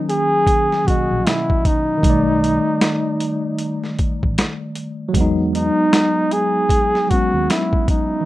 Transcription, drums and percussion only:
0.09 closed hi-hat medium
0.47 kick loud
0.47 closed hi-hat medium
0.72 snare soft
0.88 kick medium
0.88 closed hi-hat medium
1.27 snare loud
1.27 closed hi-hat medium
1.50 kick medium
1.65 kick loud
1.65 closed hi-hat medium
2.03 kick loud
2.03 closed hi-hat medium
2.44 closed hi-hat medium
2.81 snare loud
2.81 closed hi-hat medium
3.20 closed hi-hat medium
3.59 closed hi-hat medium
3.84 snare soft
3.99 kick medium
3.99 closed hi-hat medium
4.23 kick medium
4.38 snare loud
4.38 closed hi-hat medium
4.75 closed hi-hat medium
5.14 kick loud
5.14 closed hi-hat medium
5.55 closed hi-hat medium
5.93 snare loud
5.93 closed hi-hat medium
6.31 closed hi-hat medium
6.69 kick loud
6.69 closed hi-hat medium
6.95 snare soft
7.11 kick medium
7.11 closed hi-hat medium
7.50 snare loud
7.50 closed hi-hat medium
7.73 kick medium
7.88 kick medium
7.88 closed hi-hat medium

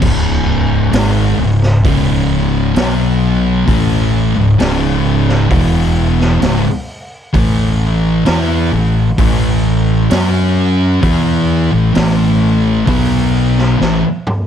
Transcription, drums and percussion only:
0.02 kick loud
0.02 crash loud
0.93 snare loud
0.93 open hi-hat medium
1.63 snare soft
1.85 kick loud
1.85 open hi-hat medium
2.76 snare loud
2.76 open hi-hat medium
3.68 kick loud
3.68 open hi-hat medium
4.60 snare loud
4.60 open hi-hat medium
5.29 snare soft
5.51 kick loud
5.51 open hi-hat medium
6.21 snare soft
6.42 snare loud
6.42 open hi-hat medium
7.34 kick loud
7.34 open hi-hat medium
8.26 snare loud
8.26 open hi-hat medium
9.18 kick loud
9.18 open hi-hat medium
10.11 snare loud
10.11 open hi-hat medium
11.03 kick loud
11.03 open hi-hat medium
11.95 snare loud
11.95 open hi-hat medium
12.87 kick loud
12.87 open hi-hat medium
13.58 snare soft
13.81 snare medium
14.27 mid tom loud

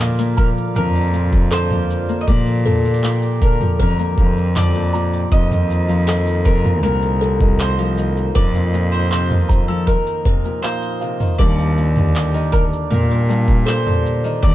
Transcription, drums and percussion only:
0.00 clap loud
0.00 open hi-hat medium
0.00 shaker soft
0.19 open hi-hat soft
0.38 kick loud
0.38 shaker medium
0.57 shaker soft
0.76 mid tom medium
0.76 open hi-hat medium
0.76 shaker soft
0.95 open hi-hat soft
1.01 open hi-hat soft
1.07 open hi-hat soft
1.13 open hi-hat soft
1.13 shaker medium
1.20 open hi-hat soft
1.26 open hi-hat soft
1.33 kick loud
1.33 shaker soft
1.51 clap loud
1.51 open hi-hat medium
1.51 shaker soft
1.71 mid tom medium
1.71 open hi-hat soft
1.90 shaker medium
2.09 open hi-hat soft
2.09 shaker soft
2.28 kick loud
2.28 open hi-hat medium
2.28 shaker soft
2.47 open hi-hat soft
2.47 shaker soft
2.66 mid tom medium
2.66 shaker medium
2.85 open hi-hat soft
2.85 shaker soft
2.94 open hi-hat medium
3.04 clap loud
3.04 shaker soft
3.22 open hi-hat soft
3.42 kick loud
3.42 shaker medium
3.61 mid tom medium
3.61 shaker soft
3.80 kick medium
3.80 open hi-hat medium
3.80 shaker soft
3.85 shaker soft
3.90 shaker soft
3.95 shaker soft
3.99 open hi-hat soft
3.99 shaker soft
4.04 shaker soft
4.09 shaker soft
4.14 kick loud
4.14 shaker soft
4.19 shaker medium
4.38 shaker soft
4.56 clap loud
4.56 mid tom medium
4.56 open hi-hat medium
4.56 shaker soft
4.75 open hi-hat soft
4.95 shaker medium
5.13 open hi-hat soft
5.13 shaker soft
5.32 kick loud
5.32 open hi-hat medium
5.32 shaker soft
5.51 mid tom medium
5.51 open hi-hat soft
5.51 shaker soft
5.71 shaker medium
5.89 open hi-hat soft
5.89 shaker soft
6.08 clap loud
6.08 open hi-hat medium
6.08 shaker soft
6.27 open hi-hat soft
6.46 kick loud
6.46 shaker medium
6.65 mid tom medium
6.65 shaker soft
6.84 open hi-hat medium
6.84 shaker soft
7.02 open hi-hat soft
7.22 shaker medium
7.41 kick loud
7.41 mid tom medium
7.41 shaker soft
7.60 clap loud
7.60 open hi-hat medium
7.60 shaker soft
7.79 open hi-hat soft
7.98 shaker medium
8.17 shaker soft
8.36 kick loud
8.36 mid tom medium
8.36 open hi-hat medium
8.36 shaker soft
8.55 open hi-hat soft
8.55 shaker soft
8.74 shaker medium
8.92 open hi-hat soft
8.92 shaker soft
9.12 clap loud
9.12 open hi-hat medium
9.12 shaker soft
9.31 mid tom medium
9.31 open hi-hat soft
9.50 kick loud
9.50 shaker medium
9.70 shaker soft
9.87 kick medium
9.87 open hi-hat medium
9.87 shaker soft
10.07 open hi-hat soft
10.07 shaker soft
10.25 kick loud
10.25 mid tom medium
10.25 shaker medium
10.45 shaker soft
10.63 clap medium
10.63 open hi-hat medium
10.63 shaker soft
10.82 open hi-hat soft
10.82 shaker soft
11.02 shaker medium
11.20 mid tom medium
11.20 open hi-hat soft
11.20 shaker soft
11.27 shaker soft
11.34 shaker soft
11.39 kick loud
11.39 open hi-hat medium
11.39 shaker soft
11.59 open hi-hat soft
11.59 shaker soft
11.78 shaker medium
11.97 mid tom medium
11.97 open hi-hat soft
11.97 shaker soft
12.16 clap loud
12.16 open hi-hat medium
12.16 shaker soft
12.34 open hi-hat soft
12.53 kick loud
12.53 shaker medium
12.73 shaker soft
12.92 mid tom medium
12.92 open hi-hat medium
12.92 shaker soft
13.11 open hi-hat soft
13.30 shaker medium
13.48 kick loud
13.48 shaker soft
13.67 clap loud
13.67 open hi-hat medium
13.67 shaker soft
13.87 mid tom medium
13.87 open hi-hat soft
14.06 shaker medium
14.25 open hi-hat soft
14.25 shaker soft
14.43 kick loud
14.43 open hi-hat medium
14.43 shaker soft

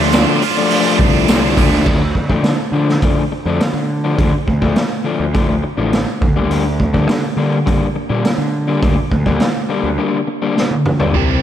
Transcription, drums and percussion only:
0.12 snare loud
0.12 open hi-hat medium
0.12 tambourine medium
0.42 open hi-hat medium
0.70 open hi-hat medium
0.99 kick medium
0.99 open hi-hat medium
1.28 snare loud
1.28 open hi-hat medium
1.28 tambourine medium
1.57 kick medium
1.57 open hi-hat medium
1.72 snare soft
1.86 kick medium
1.86 crash medium
2.15 kick medium
2.30 kick medium
2.44 snare medium
2.44 open hi-hat soft
2.89 snare soft
3.02 kick medium
3.02 open hi-hat soft
3.60 snare medium
3.60 open hi-hat soft
4.18 kick medium
4.18 open hi-hat soft
4.48 kick medium
4.62 kick medium
4.76 snare medium
4.76 open hi-hat soft
5.34 kick medium
5.34 open hi-hat soft
5.93 snare medium
5.93 open hi-hat soft
6.22 kick medium
6.51 open hi-hat soft
6.80 kick medium
6.94 kick medium
7.09 snare medium
7.09 open hi-hat soft
7.67 kick medium
7.67 open hi-hat soft
8.25 snare medium
8.25 open hi-hat soft
8.83 kick medium
8.83 open hi-hat soft
9.12 kick medium
9.26 kick medium
9.40 snare medium
9.40 open hi-hat soft
10.57 snare soft
10.71 high tom soft
10.86 mid tom medium
11.00 floor tom medium

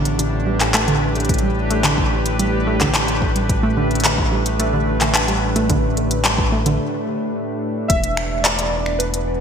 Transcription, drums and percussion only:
0.05 closed hi-hat soft
0.19 closed hi-hat medium
0.60 clap medium
0.60 closed hi-hat soft
0.74 clap loud
0.74 closed hi-hat medium
0.88 closed hi-hat soft
1.15 closed hi-hat soft
1.20 closed hi-hat soft
1.25 closed hi-hat soft
1.29 kick loud
1.29 closed hi-hat medium
1.34 closed hi-hat soft
1.38 closed hi-hat soft
1.71 closed hi-hat medium
1.84 clap loud
1.84 closed hi-hat medium
1.98 kick loud
2.26 closed hi-hat soft
2.39 closed hi-hat medium
2.81 kick medium
2.81 clap medium
2.81 closed hi-hat soft
2.95 clap loud
2.95 closed hi-hat medium
3.08 closed hi-hat soft
3.22 kick loud
3.36 closed hi-hat soft
3.49 kick loud
3.49 closed hi-hat medium
3.91 closed hi-hat soft
3.95 closed hi-hat soft
4.00 closed hi-hat soft
4.05 clap loud
4.05 closed hi-hat medium
4.18 kick loud
4.46 closed hi-hat soft
4.60 closed hi-hat medium
5.01 clap medium
5.01 closed hi-hat medium
5.15 clap loud
5.15 closed hi-hat medium
5.28 closed hi-hat soft
5.56 closed hi-hat soft
5.70 kick loud
5.70 closed hi-hat medium
5.97 closed hi-hat soft
6.11 closed hi-hat medium
6.25 clap loud
6.25 closed hi-hat medium
6.38 kick loud
6.66 closed hi-hat medium
7.90 kick loud
7.90 closed hi-hat medium
8.04 closed hi-hat medium
8.17 finger snap medium
8.45 clap loud
8.45 closed hi-hat medium
8.59 closed hi-hat medium
8.86 finger snap soft
9.00 closed hi-hat medium
9.14 closed hi-hat medium

